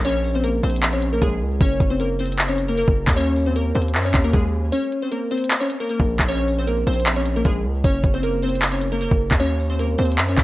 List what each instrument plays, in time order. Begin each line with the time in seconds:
Already playing: 808-style bass A#1
0.05 synth pluck C#4 C#5, closed hi-hat
0.25 open hi-hat
0.35 synth pluck C4 C5
0.44 synth pluck A#3 A#4, closed hi-hat
0.63 808-style bass A#1, synth pluck C4 C5, closed hi-hat
0.70 closed hi-hat
0.76 closed hi-hat
0.83 clap, closed hi-hat
0.93 synth pluck C#4 C#5
1.02 closed hi-hat
1.13 synth pluck A#3 A#4
1.22 808-style bass A#1, synth pluck G#3 G#4, kick, closed hi-hat
1.41 808-style bass C#2
1.61 808-style bass F#1, synth pluck C#4 C#5, kick, closed hi-hat
1.80 808-style bass F#1, kick, closed hi-hat
1.90 synth pluck C4 C5
2.00 synth pluck A#3 A#4, closed hi-hat
2.19 synth pluck C4 C5, closed hi-hat
2.26 closed hi-hat
2.32 closed hi-hat
2.39 clap, closed hi-hat
2.49 synth pluck C#4 C#5
2.58 closed hi-hat
2.69 synth pluck A#3 A#4
2.78 synth pluck A#3 A#4, closed hi-hat
2.88 808-style bass F#1, kick
3.07 808-style bass D#2, kick, clap
3.16 synth pluck C#4 C#5, closed hi-hat
3.36 open hi-hat
3.46 synth pluck C4 C5
3.56 synth pluck A#3 A#4, closed hi-hat
3.75 808-style bass D#2, synth pluck C4 C5, closed hi-hat
3.82 closed hi-hat
3.88 closed hi-hat
3.95 808-style bass F#2, clap, closed hi-hat
4.05 synth pluck C#4 C#5
4.14 808-style bass D#2, kick, clap, closed hi-hat
4.24 synth pluck A#3 A#4
4.33 808-style bass D#2, synth pluck G#3 G#4, kick, closed hi-hat
4.72 synth pluck C#4 C#5, closed hi-hat
4.92 closed hi-hat
5.02 synth pluck C4 C5
5.11 synth pluck A#3 A#4, closed hi-hat
5.31 synth pluck C4 C5, closed hi-hat
5.38 closed hi-hat
5.44 closed hi-hat
5.50 clap, closed hi-hat
5.60 synth pluck C#4 C#5
5.70 closed hi-hat
5.80 synth pluck A#3 A#4
5.89 synth pluck A#3 A#4, closed hi-hat
6.00 808-style bass A#1, kick
6.19 808-style bass A#1, kick, clap
6.28 synth pluck C#4 C#5, closed hi-hat
6.48 open hi-hat
6.58 synth pluck C4 C5
6.67 synth pluck A#3 A#4, closed hi-hat
6.87 808-style bass A#1, synth pluck C4 C5, closed hi-hat
6.93 closed hi-hat
7.00 closed hi-hat
7.06 clap, closed hi-hat
7.17 synth pluck C#4 C#5
7.26 closed hi-hat
7.36 synth pluck A#3 A#4
7.45 808-style bass A#1, synth pluck G#3 G#4, kick, closed hi-hat
7.65 808-style bass C#2
7.84 808-style bass F#1, synth pluck C#4 C#5, kick, closed hi-hat
8.04 808-style bass F#1, kick, closed hi-hat
8.14 synth pluck C4 C5
8.23 synth pluck A#3 A#4, closed hi-hat
8.43 synth pluck C4 C5, closed hi-hat
8.49 closed hi-hat
8.56 closed hi-hat
8.62 clap, closed hi-hat
8.72 synth pluck C#4 C#5
8.82 closed hi-hat
8.92 synth pluck A#3 A#4
9.01 synth pluck A#3 A#4, closed hi-hat
9.11 808-style bass F#1, kick
9.31 808-style bass D#2, kick, clap
9.40 synth pluck C#4 C#5, closed hi-hat
9.60 open hi-hat
9.70 synth pluck C4 C5
9.79 synth pluck A#3 A#4, closed hi-hat
9.98 808-style bass D#2, synth pluck C4 C5, closed hi-hat
10.05 closed hi-hat
10.12 closed hi-hat
10.18 808-style bass F#2, clap, closed hi-hat
10.29 synth pluck C#4 C#5
10.38 808-style bass D#2, kick, clap, closed hi-hat